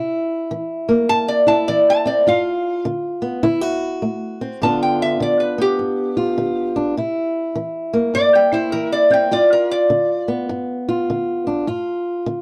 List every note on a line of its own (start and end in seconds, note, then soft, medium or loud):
0.00 0.47 C3 medium
0.00 1.46 E4 medium
0.51 1.05 E3 medium
0.89 2.25 A#3 medium
1.09 1.64 G2 medium
1.09 1.28 A5 loud
1.28 1.48 D5 medium
1.47 2.27 E4 medium
1.47 1.67 A5 medium
1.68 2.23 E3 medium
1.68 1.87 D5 medium
1.90 2.08 A5 loud
2.06 2.24 C4 medium
2.06 2.26 D5 medium
2.27 2.81 G2 medium
2.27 3.42 F4 medium
2.27 2.85 F5 medium
2.85 3.40 D3 medium
3.22 3.41 B3 medium
3.43 3.98 D3 medium
3.43 3.61 E4 medium
3.61 4.61 F#4 medium
4.02 4.57 A3 medium
4.41 4.60 C4 medium
4.62 5.16 G2 medium
4.62 5.19 D3 medium
4.62 5.57 B3 medium
4.62 6.75 D4 medium
4.62 6.16 F4 medium
4.62 4.81 A5 medium
4.83 5.01 G5 medium
5.02 5.21 E5 medium
5.20 5.75 D3 medium
5.20 5.40 D5 medium
5.40 5.59 B4 medium
5.58 6.94 B3 medium
5.58 6.75 G4 medium
5.79 6.33 G2 medium
6.17 6.94 F4 medium
6.38 6.92 D3 medium
6.76 6.95 D4 medium
6.97 7.52 C3 medium
6.97 8.51 E4 medium
7.55 8.10 E3 medium
7.93 9.30 A#3 medium
8.14 8.68 G2 medium
8.14 8.34 D5 loud
8.35 8.54 G5 medium
8.52 9.31 E4 medium
8.52 8.72 C5 medium
8.72 9.28 E3 medium
8.72 8.92 A#4 medium
8.92 9.12 D5 medium
9.10 9.29 C4 medium
9.10 9.32 G5 medium
9.31 9.86 G2 medium
9.31 10.87 F4 medium
9.31 9.51 D5 medium
9.53 9.71 A#4 medium
9.71 10.28 D5 medium
9.90 10.45 D3 medium
10.28 11.65 B3 medium
10.49 11.04 G2 medium
10.89 11.65 F4 medium
11.10 11.64 D3 medium
11.47 11.65 D4 medium
11.67 12.22 G2 medium
11.67 12.42 F4 medium
12.26 12.42 D3 medium